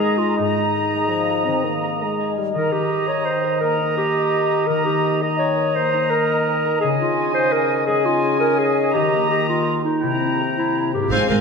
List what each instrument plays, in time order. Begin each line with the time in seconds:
Already playing: harp G#2 D#3 A#3 D#4 A#4 D#5, french horn section G#3, clarinet G#4, oboe D#5, flute section A#5
0.04 harp G#5
0.18 clarinet F4, harp A#4
0.38 harp G#2, clarinet D#4, oboe D#5, flute section A#5
0.57 harp D#4
0.75 harp A#4
0.93 french horn section G#3, harp D#5
1.09 french horn section F3, harp G#5
1.29 harp A#4
1.45 harp D#3, french horn section C4
1.64 french horn section A#3, harp D#4
1.83 harp A#4
2.02 french horn section G#3, harp D#5
2.20 harp G#5
2.37 french horn section G3, harp A#4
2.54 french horn section D#3, harp D#3, clarinet A#4, oboe D#5, flute section A#5
2.73 harp D#4, clarinet G4
2.90 harp A#4
3.08 clarinet C#5, harp D#5
3.25 clarinet C5, harp G5
3.44 harp A#4
3.61 harp A#3, clarinet A#4, oboe D#5, flute section A#5
3.80 harp D#4
3.97 clarinet G4, harp A#4
4.15 harp D#5
4.33 harp G5
4.51 harp A#4
4.67 harp D#3, clarinet A#4, oboe D#5, flute section A#5
4.85 harp D#4, clarinet G4
5.04 harp A#4
5.22 harp D#5, clarinet D#5, oboe D#5, flute section A#5
5.39 clarinet C#5, harp G5
5.57 harp A#4
5.75 harp A#3, clarinet C5
5.93 harp D#4
6.10 clarinet A#4, harp A#4
6.30 harp D#5
6.47 harp G5
6.65 harp A#4
6.81 harp C#3, french horn section C#3, clarinet G#4, oboe D#5, flute section G#5
6.98 harp D#4, clarinet F4
7.19 harp C#5
7.34 clarinet C5, harp D#5
7.52 clarinet A#4, harp G#5
7.71 harp C#5
7.86 harp G#3, clarinet G#4, oboe D#5, flute section G#5
8.06 harp D#4, clarinet F4
8.24 harp C#5
8.40 clarinet A#4, harp D#5
8.59 clarinet G#4, harp G#5
8.78 harp C#5
8.94 french horn section D#3, harp D#3, clarinet G4, oboe D#5, flute section A#5
9.13 harp A#3
9.30 clarinet G4, harp A#4
9.48 clarinet F4, harp G4
9.67 harp G5
9.84 clarinet D#4, harp A#4
10.01 harp C3, french horn section C3, clarinet E4, oboe G5, flute section A#5
10.21 harp C4
10.40 harp A#4
10.57 clarinet E4, harp C5
10.76 harp G5
10.94 harp G#2 A#4, clarinet G4
10.99 harp C4
11.03 harp F4
11.08 double bass section G#1, cello section G#2, viola section C4, harp G#4, violin section F5
11.12 clarinet C5, violin section G#5
11.27 double bass section G#1, viola section C4, clarinet A#4, violin section F5 G#5
11.31 cello section G#2